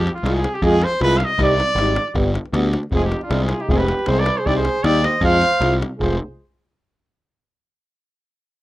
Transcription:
Already playing: trumpet G4
0.07 davul high
0.15 trumpet F4, davul high
0.23 picked electric bass C2, euphonium G#3, french horn F4, davul high
0.34 trumpet G#4, davul high
0.44 davul high
0.54 trumpet G4, davul high
0.62 picked electric bass F2, euphonium G#3, french horn F4, trumpet G#4, davul low
0.74 davul high
0.82 trumpet C5, davul high
0.93 davul high
1.01 picked electric bass C2, euphonium G#3, french horn F4, trumpet B4, davul high
1.17 trumpet F5, davul high
1.25 trumpet D#5
1.39 picked electric bass C2, euphonium G3, french horn D#4, davul low
1.43 trumpet D5
1.52 davul high
1.60 davul high
1.71 davul high
1.75 picked electric bass G#1, euphonium G3, french horn D#4, davul high
1.88 davul high
1.96 davul high
2.08 davul high
2.15 picked electric bass G1, euphonium G3, french horn B3, davul low
2.35 davul high
2.46 davul high
2.53 picked electric bass D2, euphonium G3, french horn B3, davul high
2.64 davul high
2.73 davul high
2.83 davul high
2.92 picked electric bass F1, euphonium G#3, french horn C4, flugelhorn F4, trumpet G#4, davul low
3.01 flugelhorn D#4, trumpet G4, davul high
3.12 davul high
3.21 flugelhorn D4, trumpet F4, davul high
3.30 picked electric bass C2, euphonium G#3, french horn C4, davul high
3.40 flugelhorn F4, trumpet G#4, davul high
3.49 davul high
3.60 flugelhorn D#4, trumpet G4, davul high
3.67 picked electric bass F1, euphonium G#3, french horn C4, flugelhorn F4, trumpet G#4, davul low
3.77 flugelhorn G4, trumpet B4, davul high
3.88 davul high
3.99 davul high
4.06 picked electric bass C2, euphonium G#3, french horn C4, flugelhorn G#4, trumpet C5, davul high
4.16 trumpet D5, davul high
4.21 flugelhorn B4
4.26 davul high
4.37 flugelhorn G#4, trumpet C5, davul high
4.45 picked electric bass C2, euphonium G3, french horn D#4, flugelhorn G4, trumpet D5, davul low
4.55 flugelhorn G#4, trumpet C5, davul high
4.65 davul high
4.75 davul high
4.84 picked electric bass D#2, euphonium G3, french horn D#4, flugelhorn G4, trumpet D5, davul high
4.96 davul high
5.04 flugelhorn C5, trumpet D#5, davul high
5.21 picked electric bass F2, euphonium G#3, french horn F4, flugelhorn C5, trumpet F5, davul low
5.34 davul high
5.42 davul high
5.53 davul high
5.59 picked electric bass C2, euphonium G#3, french horn F4, davul high
5.73 davul high
5.82 davul high
5.98 picked electric bass F1, euphonium G#3, french horn F4, flugelhorn G#4, trumpet C5, davul low

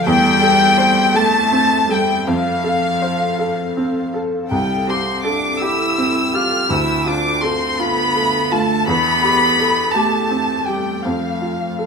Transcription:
Already playing: ambient pad A4
0.06 felt piano E2, cello G3, ambient pad C4 E5, violin section G5
0.42 felt piano A4
0.78 felt piano C5
1.14 cello A3, felt piano A4, violin section A5
1.52 felt piano C4
1.89 cello G3, felt piano A4, violin section G5
2.26 felt piano F2, cello F3, ambient pad A4 F5, violin section F5
2.64 felt piano A4
3.02 felt piano C5
3.39 felt piano A4
3.77 felt piano C4
4.14 felt piano A4
4.50 felt piano C2, cello G3, ambient pad C4 G5, violin section G5
4.87 cello C4, felt piano G4, violin section C6
5.24 cello D4, felt piano A4, violin section D6
5.61 cello E4, felt piano G4, violin section E6
5.98 felt piano C4
6.33 cello F4, felt piano G4, violin section F6
6.70 felt piano D2, ambient pad D4 A4 E5, cello E4, violin section E6
7.06 cello D4, felt piano F4, violin section D6
7.42 cello C4, felt piano A4, violin section C6
7.79 cello B3, felt piano F4, violin section B5
8.16 felt piano A3
8.51 cello A3, felt piano F4, violin section A5
8.87 felt piano E2, ambient pad A3 G5, cello B3, violin section B5
9.23 felt piano G4
9.59 felt piano A4
9.94 cello A3, felt piano G4, violin section A5
10.31 felt piano C4
10.67 cello G3, felt piano G4, violin section G5
11.04 felt piano F2, cello F3, ambient pad A4 F5, violin section F5
11.41 felt piano F4
11.79 felt piano A4

